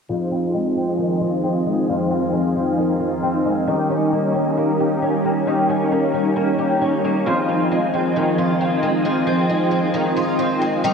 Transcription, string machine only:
0, 0, Header, 1, 2, 480
1, 0, Start_track
1, 0, Key_signature, -4, "minor"
1, 0, Tempo, 895522
1, 49, Time_signature, 4, 2, 24, 8
1, 5862, End_track
2, 0, Start_track
2, 0, Title_t, "String machine"
2, 0, Program_c, 0, 50
2, 50, Note_on_c, 0, 63, 66
2, 51, Note_on_c, 0, 53, 66
2, 51, Note_on_c, 0, 60, 63
2, 52, Note_on_c, 0, 68, 61
2, 52, Note_on_c, 0, 75, 74
2, 1001, Note_off_c, 0, 75, 0
2, 1007, Note_on_c, 0, 77, 83
2, 1951, Note_off_c, 0, 53, 0
2, 1951, Note_off_c, 0, 60, 0
2, 1951, Note_off_c, 0, 68, 0
2, 1959, Note_off_c, 0, 77, 0
2, 1964, Note_on_c, 0, 55, 64
2, 1964, Note_on_c, 0, 70, 63
2, 1965, Note_on_c, 0, 61, 64
2, 1967, Note_on_c, 0, 75, 75
2, 2919, Note_off_c, 0, 75, 0
2, 2932, Note_on_c, 0, 73, 83
2, 3867, Note_off_c, 0, 55, 0
2, 3867, Note_off_c, 0, 70, 0
2, 3868, Note_off_c, 0, 61, 0
2, 3881, Note_off_c, 0, 73, 0
2, 3887, Note_on_c, 0, 53, 73
2, 3887, Note_on_c, 0, 68, 61
2, 3888, Note_on_c, 0, 75, 74
2, 3890, Note_on_c, 0, 60, 62
2, 5789, Note_off_c, 0, 53, 0
2, 5789, Note_off_c, 0, 68, 0
2, 5789, Note_off_c, 0, 75, 0
2, 5790, Note_off_c, 0, 60, 0
2, 5807, Note_on_c, 0, 55, 65
2, 5808, Note_on_c, 0, 61, 63
2, 5809, Note_on_c, 0, 75, 75
2, 5810, Note_on_c, 0, 70, 67
2, 5862, Note_off_c, 0, 55, 0
2, 5862, Note_off_c, 0, 61, 0
2, 5862, Note_off_c, 0, 63, 0
2, 5862, Note_off_c, 0, 70, 0
2, 5862, Note_off_c, 0, 75, 0
2, 5862, End_track
0, 0, End_of_file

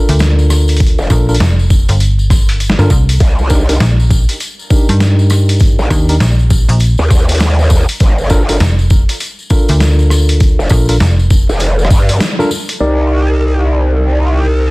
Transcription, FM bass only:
0, 0, Header, 1, 2, 480
1, 0, Start_track
1, 0, Tempo, 600000
1, 643, Time_signature, 4, 2, 24, 8
1, 11764, End_track
2, 0, Start_track
2, 0, Title_t, "FM bass"
2, 0, Program_c, 0, 39
2, 71, Note_on_c, 0, 38, 97
2, 768, Note_off_c, 0, 38, 0
2, 883, Note_on_c, 0, 34, 99
2, 1108, Note_off_c, 0, 34, 0
2, 1121, Note_on_c, 0, 29, 96
2, 1487, Note_off_c, 0, 29, 0
2, 1510, Note_on_c, 0, 31, 98
2, 2207, Note_off_c, 0, 31, 0
2, 2230, Note_on_c, 0, 31, 96
2, 2307, Note_off_c, 0, 31, 0
2, 2323, Note_on_c, 0, 36, 96
2, 2548, Note_off_c, 0, 36, 0
2, 3041, Note_on_c, 0, 34, 97
2, 3407, Note_off_c, 0, 34, 0
2, 3912, Note_on_c, 0, 43, 96
2, 4608, Note_off_c, 0, 43, 0
2, 4724, Note_on_c, 0, 39, 96
2, 4949, Note_off_c, 0, 39, 0
2, 4961, Note_on_c, 0, 34, 96
2, 5327, Note_off_c, 0, 34, 0
2, 5349, Note_on_c, 0, 34, 96
2, 5567, Note_off_c, 0, 34, 0
2, 6883, Note_on_c, 0, 29, 95
2, 7248, Note_off_c, 0, 29, 0
2, 7753, Note_on_c, 0, 38, 97
2, 8449, Note_off_c, 0, 38, 0
2, 8564, Note_on_c, 0, 34, 97
2, 8789, Note_off_c, 0, 34, 0
2, 8804, Note_on_c, 0, 29, 95
2, 9169, Note_off_c, 0, 29, 0
2, 11764, End_track
0, 0, End_of_file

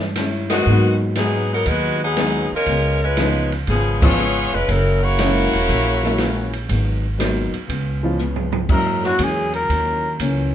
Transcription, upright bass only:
0, 0, Header, 1, 3, 480
1, 0, Start_track
1, 0, Tempo, 502092
1, 636, Time_signature, 4, 2, 24, 8
1, 10085, End_track
2, 0, Start_track
2, 0, Title_t, "Upright bass"
2, 0, Program_c, 0, 32
2, 0, Note_on_c, 0, 43, 77
2, 598, Note_off_c, 0, 43, 0
2, 635, Note_on_c, 0, 44, 85
2, 1557, Note_off_c, 0, 44, 0
2, 1589, Note_on_c, 0, 39, 82
2, 2366, Note_off_c, 0, 39, 0
2, 2549, Note_on_c, 0, 37, 77
2, 3475, Note_off_c, 0, 37, 0
2, 3516, Note_on_c, 0, 32, 90
2, 4289, Note_off_c, 0, 32, 0
2, 4328, Note_on_c, 0, 29, 65
2, 4467, Note_off_c, 0, 29, 0
2, 4479, Note_on_c, 0, 30, 88
2, 5251, Note_off_c, 0, 30, 0
2, 5282, Note_on_c, 0, 28, 68
2, 5423, Note_off_c, 0, 28, 0
2, 5441, Note_on_c, 0, 34, 90
2, 6360, Note_off_c, 0, 34, 0
2, 6394, Note_on_c, 0, 32, 81
2, 7168, Note_off_c, 0, 32, 0
2, 7359, Note_on_c, 0, 37, 78
2, 8279, Note_off_c, 0, 37, 0
2, 8308, Note_on_c, 0, 42, 76
2, 8777, Note_off_c, 0, 42, 0
2, 8784, Note_on_c, 0, 40, 95
2, 9255, Note_off_c, 0, 40, 0
2, 9267, Note_on_c, 0, 39, 79
2, 9736, Note_off_c, 0, 39, 0
2, 9752, Note_on_c, 0, 37, 79
2, 10085, Note_off_c, 0, 37, 0
2, 10085, End_track
3, 0, Start_track
3, 0, Title_t, "Muted upright bass strokes"
3, 2408, Note_on_c, 9, 29, 41
3, 2504, Note_off_c, 9, 29, 0
3, 7204, Note_on_c, 9, 29, 42
3, 7300, Note_off_c, 9, 29, 0
3, 10085, End_track
0, 0, End_of_file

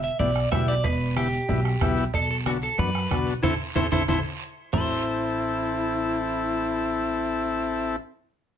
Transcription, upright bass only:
0, 0, Header, 1, 2, 480
1, 0, Start_track
1, 0, Tempo, 324149
1, 1247, Time_signature, 4, 2, 24, 8
1, 12704, End_track
2, 0, Start_track
2, 0, Title_t, "Upright bass"
2, 0, Program_c, 0, 32
2, 287, Note_on_c, 0, 35, 101
2, 671, Note_off_c, 0, 35, 0
2, 771, Note_on_c, 0, 35, 95
2, 1153, Note_off_c, 0, 35, 0
2, 1245, Note_on_c, 0, 28, 100
2, 2014, Note_off_c, 0, 28, 0
2, 2205, Note_on_c, 0, 35, 112
2, 2590, Note_off_c, 0, 35, 0
2, 2685, Note_on_c, 0, 35, 97
2, 3070, Note_off_c, 0, 35, 0
2, 3165, Note_on_c, 0, 35, 87
2, 3934, Note_off_c, 0, 35, 0
2, 4121, Note_on_c, 0, 42, 113
2, 4507, Note_off_c, 0, 42, 0
2, 4607, Note_on_c, 0, 35, 91
2, 4991, Note_off_c, 0, 35, 0
2, 5087, Note_on_c, 0, 33, 88
2, 5265, Note_off_c, 0, 33, 0
2, 5569, Note_on_c, 0, 33, 86
2, 5746, Note_off_c, 0, 33, 0
2, 5811, Note_on_c, 0, 33, 85
2, 5988, Note_off_c, 0, 33, 0
2, 6050, Note_on_c, 0, 33, 93
2, 6227, Note_off_c, 0, 33, 0
2, 7010, Note_on_c, 0, 33, 97
2, 11781, Note_off_c, 0, 33, 0
2, 12704, End_track
0, 0, End_of_file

